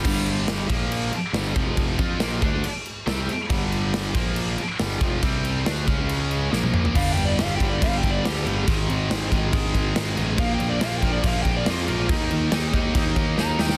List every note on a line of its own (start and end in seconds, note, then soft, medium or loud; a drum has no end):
0.04 0.66 G1 loud
0.04 0.69 G2 loud
0.04 0.68 D3 loud
0.04 0.69 G3 loud
0.04 kick loud
0.04 crash loud
0.04 crash medium
0.26 crash medium
0.48 snare loud
0.48 crash medium
0.69 1.10 A#1 medium
0.69 1.12 A#2 loud
0.69 1.12 F3 loud
0.69 1.12 A#3 loud
0.69 kick loud
0.69 crash loud
0.92 crash loud
1.12 muted picked electric bass stroke soft
1.12 muted distorted electric guitar stroke medium
1.12 crash medium
1.33 1.54 G1 loud
1.33 1.55 G2 medium
1.33 1.55 D3 loud
1.33 1.56 G3 loud
1.33 snare loud
1.33 crash medium
1.45 snare soft
1.55 1.96 F1 loud
1.55 1.98 F2 medium
1.55 1.98 C3 loud
1.55 1.97 F3 loud
1.55 kick loud
1.55 crash medium
1.77 kick loud
1.77 crash medium
1.98 2.19 F2 loud
1.98 2.20 F3 medium
1.98 2.20 C4 loud
1.98 2.20 F4 loud
1.98 kick loud
1.98 crash medium
2.20 2.41 A#1 loud
2.20 2.41 A#2 loud
2.20 2.42 F3 loud
2.20 2.42 A#3 loud
2.20 snare loud
2.20 crash medium
2.42 2.62 D2 medium
2.42 2.63 D3 medium
2.42 2.64 A3 loud
2.42 2.64 D4 loud
2.42 kick loud
2.42 crash medium
2.64 muted picked electric bass stroke soft
2.64 muted distorted electric guitar stroke medium
2.64 crash medium
2.86 crash medium
3.07 3.27 C2 medium
3.07 3.28 C3 loud
3.07 3.28 G3 loud
3.07 3.28 C4 loud
3.07 snare loud
3.07 crash medium
3.29 muted picked electric bass stroke soft
3.29 muted distorted electric guitar stroke medium
3.29 crash medium
3.50 4.11 G1 loud
3.50 4.14 G2 medium
3.50 4.14 D3 loud
3.50 4.15 G3 loud
3.50 kick loud
3.50 crash loud
3.72 crash medium
3.94 snare loud
3.94 crash medium
4.15 4.55 A#1 medium
4.15 4.57 A#2 loud
4.15 4.58 F3 loud
4.15 4.58 A#3 loud
4.15 kick loud
4.15 crash loud
4.36 crash medium
4.58 muted distorted electric guitar stroke medium
4.58 muted picked electric bass stroke soft
4.58 crash medium
4.79 5.00 G1 loud
4.79 5.00 G2 loud
4.79 5.01 D3 medium
4.79 5.01 G3 loud
4.79 snare loud
4.79 crash medium
4.91 snare soft
5.01 5.21 F1 medium
5.01 5.22 F2 loud
5.01 5.21 C3 loud
5.01 5.22 F3 loud
5.01 kick loud
5.01 crash medium
5.22 5.63 C2 loud
5.22 5.65 C3 loud
5.22 5.65 G3 loud
5.22 5.66 C4 loud
5.22 kick loud
5.22 crash medium
5.45 crash medium
5.65 5.86 D2 loud
5.65 5.87 D3 loud
5.65 5.88 A3 loud
5.65 5.88 D4 loud
5.65 snare loud
5.65 crash medium
5.87 6.48 C#2 medium
5.87 6.51 C#3 loud
5.87 6.52 G#3 loud
5.87 6.52 C#4 loud
5.87 kick loud
5.87 crash medium
6.09 crash medium
6.31 crash medium
6.51 6.92 A#1 loud
6.51 6.94 A#2 loud
6.51 6.95 F3 loud
6.51 6.95 A#3 loud
6.51 snare medium
6.63 high tom medium
6.74 mid tom loud
6.85 floor tom loud
6.95 7.15 G1 loud
6.95 7.37 G2 medium
6.95 7.38 D3 loud
6.95 7.38 G3 loud
6.95 7.10 F5 loud
6.95 kick loud
6.95 crash loud
7.12 7.25 G5 medium
7.17 7.37 G1 medium
7.17 crash medium
7.25 7.39 D5 medium
7.38 7.59 G1 loud
7.38 7.58 G2 medium
7.38 7.59 D3 medium
7.38 7.59 G3 loud
7.38 7.53 F5 medium
7.38 snare loud
7.38 crash loud
7.55 7.68 G5 medium
7.59 7.80 G1 medium
7.59 7.80 G2 medium
7.59 7.81 D3 medium
7.59 7.81 G3 loud
7.59 kick medium
7.59 crash medium
7.69 7.82 D5 medium
7.81 8.02 G1 medium
7.81 8.23 G2 loud
7.81 8.23 D3 loud
7.81 8.23 G3 loud
7.81 7.97 F5 loud
7.81 kick loud
7.81 crash loud
7.97 8.11 G5 medium
8.03 8.23 G1 loud
8.03 kick medium
8.03 crash medium
8.11 8.24 D5 medium
8.24 8.45 D2 loud
8.24 8.44 G2 medium
8.24 8.45 D3 medium
8.24 8.45 G3 loud
8.24 8.66 G4 loud
8.24 snare loud
8.24 crash loud
8.36 snare soft
8.45 8.66 G1 medium
8.45 8.66 G2 medium
8.45 8.66 D3 medium
8.45 8.66 G3 loud
8.45 crash medium
8.67 8.87 G#1 loud
8.67 9.09 G#2 medium
8.67 9.09 D#3 loud
8.67 9.09 G#3 loud
8.67 kick loud
8.67 crash loud
8.90 9.09 G#1 loud
8.90 crash medium
9.10 9.30 G#1 loud
9.10 9.29 G#2 loud
9.10 9.30 D#3 loud
9.10 9.30 G#3 loud
9.10 snare loud
9.10 crash medium
9.30 9.52 G#1 medium
9.30 9.50 G#2 medium
9.30 9.51 D#3 medium
9.30 9.52 G#3 medium
9.30 kick medium
9.30 crash medium
9.52 9.73 G#1 medium
9.52 9.94 G#2 loud
9.52 9.94 D#3 loud
9.52 9.94 G#3 loud
9.52 kick loud
9.52 crash loud
9.74 9.94 G#1 medium
9.74 kick medium
9.74 crash medium
9.95 10.16 G#1 medium
9.95 10.15 G#2 medium
9.95 10.15 D#3 medium
9.95 10.16 G#3 medium
9.95 snare loud
9.95 crash medium
10.16 10.37 A1 medium
10.16 10.37 G#2 medium
10.16 10.37 D#3 loud
10.16 10.37 G#3 loud
10.16 crash medium
10.38 10.59 A#1 loud
10.38 10.80 A#2 loud
10.38 10.80 F3 loud
10.38 10.81 A#3 loud
10.38 10.53 F5 loud
10.38 kick loud
10.38 crash loud
10.54 10.68 G5 medium
10.60 10.80 A#1 medium
10.60 crash medium
10.70 10.83 D5 medium
10.81 11.02 A#1 loud
10.81 11.01 A#2 medium
10.81 11.02 F3 medium
10.81 11.03 A#3 medium
10.81 10.96 F5 loud
10.81 snare loud
10.81 crash medium
10.98 11.11 G5 medium
11.02 11.23 A#1 medium
11.02 11.22 A#2 loud
11.02 11.23 F3 loud
11.02 11.24 A#3 loud
11.02 kick medium
11.02 crash medium
11.12 11.25 D5 loud
11.23 11.44 A#1 loud
11.23 11.65 A#2 loud
11.23 11.65 F3 loud
11.23 11.66 A#3 loud
11.23 11.42 F5 loud
11.23 kick loud
11.23 crash loud
11.42 11.65 A#1 loud
11.42 11.54 G5 loud
11.42 kick medium
11.42 crash medium
11.57 11.69 D5 medium
11.66 11.87 F2 medium
11.66 11.86 A#2 medium
11.66 11.87 F3 medium
11.66 11.88 A#3 loud
11.66 12.10 F4 loud
11.66 snare loud
11.66 crash loud
11.77 snare soft
11.87 12.08 A#1 medium
11.87 12.08 A#2 medium
11.87 12.09 F3 medium
11.87 12.09 A#3 loud
11.87 crash medium
12.09 12.29 D#2 loud
12.09 12.50 D#3 medium
12.09 12.51 A#3 loud
12.09 12.51 D#4 loud
12.09 kick loud
12.09 crash loud
12.31 12.51 D#2 loud
12.31 crash medium
12.51 12.72 D#2 loud
12.51 12.72 D#3 medium
12.51 12.73 A#3 medium
12.51 12.73 D#4 loud
12.51 snare loud
12.51 crash medium
12.73 12.94 D#2 medium
12.73 12.93 D#3 medium
12.73 12.93 A#3 loud
12.73 12.94 D#4 loud
12.73 kick medium
12.73 crash medium
12.94 13.15 D#2 medium
12.94 13.36 D#3 loud
12.94 13.37 A#3 loud
12.94 13.37 D#4 loud
12.94 kick loud
12.94 crash loud
13.16 13.36 D#2 loud
13.16 kick medium
13.16 crash medium
13.37 13.58 D#2 medium
13.37 13.57 D#3 medium
13.37 13.57 A#3 medium
13.37 13.58 D#4 loud
13.37 13.60 A#5 loud
13.37 snare medium
13.58 13.77 D#2 medium
13.58 13.77 D#3 medium
13.58 13.77 A#3 medium
13.58 13.77 D#4 medium
13.58 13.77 G5 loud
13.58 snare loud
13.69 snare loud